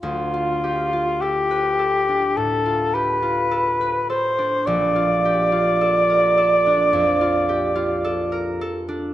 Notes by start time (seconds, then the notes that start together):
0.02 D2 F4
0.34 F4
0.64 G4
0.93 F4
1.21 G4 A4
1.51 B4
1.79 A4
2.09 D4
2.37 A2 A4
2.66 F4
2.94 G4 B4
3.22 F4
3.51 A4
3.81 B4
4.10 A4 C5
4.39 D4
4.67 A#1 D5
4.96 F4
5.25 G4
5.52 F4
5.81 A4
6.10 A#4
6.38 A4
6.66 D4
6.93 F2
7.21 F4
7.49 G4
7.75 F4
8.05 A4
8.32 A#4
8.61 A4
8.89 D4